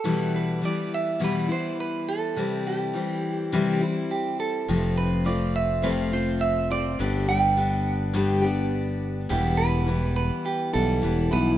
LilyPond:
<<
  \new Staff \with { instrumentName = "Clean electric guitar" } { \time 4/4 \key e \minor \tempo 4 = 104 a'8 b'8 d''8 e''8 b'8 c''8 b'8 a'8~ | a'8 g'2~ g'8 g'8 a'8~ | a'8 b'8 d''8 e''8 b'8 c''8 e''8 d''8~ | d''8 g''2. r8 |
g'8 b'4 b'8 g'8 a'4 b'8 | }
  \new Staff \with { instrumentName = "Steel-string acoustic guitar" } { \time 4/4 \key e \minor <e, b, e g b e'>4 <e g b e'>4 <e, b, e g b e'>8 <e g b e'>4. | <c e g c' e'>4 <e g c' e'>4 <c e g c' e'>8 <g c' e'>4. | <f, c f a c' f'>4 <f a c' f'>4 <f, c f a c' f'>8 <f a c' f'>4 <f a c' f'>8 | <g, d g b d' g'>8 <g b d' g'>8 <g b d' g'>4 <g, d g b d' g'>8 <g b d' g'>4. |
<e, b, e g b e'>4 <e g b e'>4. <e g b e'>8 <e g b e'>8 <e g b e'>8 | }
  \new Staff \with { instrumentName = "Fingered electric bass" } { \clef bass \time 4/4 \key e \minor r1 | r1 | f,,1 | g,,1 |
e,,2 r8 b,,8 e,,8 b,,8 | }
>>